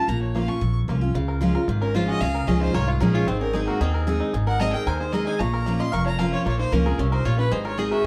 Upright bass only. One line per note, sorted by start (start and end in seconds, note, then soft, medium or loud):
0.08 0.47 A#1 medium
0.61 0.84 A#1 medium
0.88 1.11 C2 medium
1.14 1.54 C#2 medium
1.68 2.07 G#1 medium
2.21 2.41 C#2 medium
2.48 2.70 C#2 loud
2.74 2.97 C2 medium
3.01 3.23 A#1 medium
3.27 3.67 G#1 medium
3.80 4.20 D#2 medium
4.34 4.73 G#1 medium
4.87 5.26 D#2 medium
5.39 5.79 A#1 medium
5.93 6.32 F1 medium
6.46 6.65 A#1 medium
6.72 6.95 C#2 medium
6.98 7.21 C2 medium
7.25 7.48 A#1 medium
7.51 7.91 G#1 medium